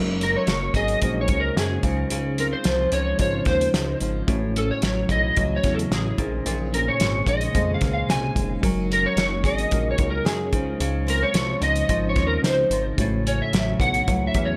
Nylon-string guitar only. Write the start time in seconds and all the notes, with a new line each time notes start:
Already playing: F#3 A#3 C#4 F#4
0.22 D#4
0.49 A#3
0.76 G#4
1.04 A#3
1.31 D#4
1.58 G#4
1.84 C#3
2.11 C#3
2.38 C4
2.66 F3
2.93 D#4
3.20 F3
3.48 C4
3.75 D#4
4.02 F3
4.28 A2
4.56 C#4
4.83 F#3
5.10 E4
5.36 F#3
5.64 C#4
5.91 E4
6.18 A#2
6.46 A#2
6.73 C#4
7.01 G#3
7.28 D#4
7.55 G#3
7.82 C#4
8.09 D#4
8.36 G#3
8.64 F#3
8.91 D#4
9.18 A#3
9.44 G#4
9.72 A#3
9.98 D#4
10.25 G#4
10.52 C#3
10.80 C#3
11.07 C4
11.35 F3
11.61 D#4
11.89 F3
12.18 C4
12.45 D#4
12.73 F3
13.01 A2
13.27 C#4
13.54 F#3
13.81 E4
14.09 F#3
14.36 C#4